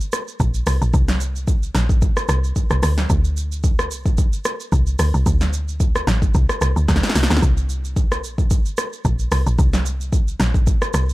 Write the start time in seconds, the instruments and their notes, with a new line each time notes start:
0.01 shaker
0.13 cross-stick, shaker
0.28 shaker
0.40 log drum bass A#1, kick, shaker
0.54 shaker
0.67 log drum bass C2, cross-stick, open hi-hat, shaker
0.82 log drum bass A#1, shaker
0.94 log drum bass C2, kick, shaker
1.08 snare, shaker
1.21 shaker
1.36 shaker
1.48 kick, shaker
1.63 shaker
1.75 log drum bass A#1, snare, shaker
1.89 kick, shaker
2.02 kick, shaker
2.17 cross-stick, shaker
2.29 log drum bass C2, cross-stick, shaker
2.44 shaker
2.56 kick, shaker
2.70 log drum bass C2, cross-stick, shaker
2.83 log drum bass D2, cross-stick, open hi-hat, shaker
2.98 snare, shaker
3.10 log drum bass D2, kick, shaker
3.24 shaker
3.37 shaker
3.52 shaker
3.64 kick, shaker
3.79 cross-stick, shaker
3.91 log drum bass C2, shaker
4.06 kick, shaker
4.18 kick, shaker
4.33 shaker
4.45 cross-stick, shaker
4.60 shaker
4.72 log drum bass C2, kick, shaker
4.87 shaker
4.99 log drum bass D2, cross-stick, open hi-hat, shaker
5.14 log drum bass C2, shaker
5.26 log drum bass D2, kick, shaker
5.41 snare, shaker
5.53 shaker
5.68 shaker
5.80 kick, shaker
5.96 cross-stick, shaker
6.07 log drum bass A1, snare, shaker
6.22 kick, shaker
6.34 log drum bass C2, kick, shaker
6.49 cross-stick, shaker
6.61 log drum bass C2, cross-stick, shaker
6.76 log drum bass D2, shaker
6.88 log drum bass D2, kick, snare, shaker
6.96 snare
7.03 snare, shaker
7.09 snare
7.15 log drum bass C2, snare, open hi-hat, shaker
7.23 snare
7.30 log drum bass D2, snare, shaker
7.37 snare
7.42 log drum bass C2, kick, shaker
7.57 shaker
7.70 shaker
7.85 shaker
7.96 kick, shaker
8.12 cross-stick, shaker
8.24 log drum bass A#1, shaker
8.38 kick, shaker
8.51 kick, shaker
8.66 shaker
8.78 cross-stick, shaker
8.93 shaker
9.05 log drum bass A#1, kick, shaker
9.19 shaker
9.32 log drum bass C2, cross-stick, open hi-hat, shaker
9.46 log drum bass A#1, shaker
9.59 log drum bass C2, kick, shaker
9.73 snare, shaker
9.86 shaker
10.01 shaker
10.13 kick, shaker
10.28 shaker
10.40 log drum bass A#1, snare, shaker
10.54 kick, shaker
10.67 kick, shaker
10.82 cross-stick, shaker
10.94 log drum bass C2, cross-stick, shaker
11.09 shaker